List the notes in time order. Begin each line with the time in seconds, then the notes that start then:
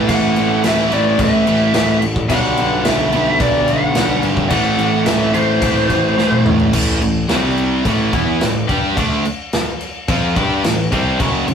Already playing: A2 E3 A3 C4 E4
0.09 A1 F#5, kick, crash
0.36 A1, crash
0.63 A1 A2 E3 A3 E5, snare, crash
0.91 A1 A2 E3 A3 D5, crash
1.19 A1 E5, kick, crash
1.46 A1 A2 E3 A3, crash
1.73 A1 A2 E3 A3 C4 E4, snare, crash
2.02 A1, crash
2.16 kick
2.28 B1 G2 B2 D3 G3 B3 D4 F#5, kick, crash
2.58 B1, crash
2.85 B1 E5, snare, crash
3.12 B1 G2 D3 G3, crash
3.39 B1 G2 D3 G3 D5, kick, crash
3.68 B1 F#5, crash
3.94 B1 G2 D3 G3, snare, crash
4.22 G#1 B2 G3 B3 D4, crash
4.37 kick
4.50 A1 A2 E3 A3 C4 E4 F#5, kick, crash
4.79 A1, crash
5.06 A1 E5, snare, crash
5.33 A1 A2 E3 A3 C5, crash
5.61 A1 A2 E3 A3, kick, crash
5.90 A1, kick, crash
6.17 A1 A2 E3 A3, snare
6.32 high tom
6.44 A1 A2 E3 A3 C4 E4, mid tom
6.60 floor tom
6.73 A1 A2 E3 A3, kick, crash
7.01 A1 A2 E3, crash
7.28 C2 C3 G3 C4, snare, crash
7.58 crash
7.84 A1 A2 E3 A3, kick, crash
8.12 E2 E3 B3 E4, kick, crash
8.40 A1 A2 E3, snare, crash
8.68 G2 G3 D4 G4, kick, crash
8.96 D2 D3 A3 D4, kick, crash
9.25 crash
9.53 snare, crash
9.81 crash
10.08 F2 F3 C4 F4, kick, crash
10.36 G2 G3 D4 G4, kick, crash
10.63 A1 A2 E3, snare, crash
10.91 C2 C3 G3 C4, kick, crash
11.19 F#1 F#2 C#3 F#3, kick, crash
11.48 F#1 F#2 C#3, crash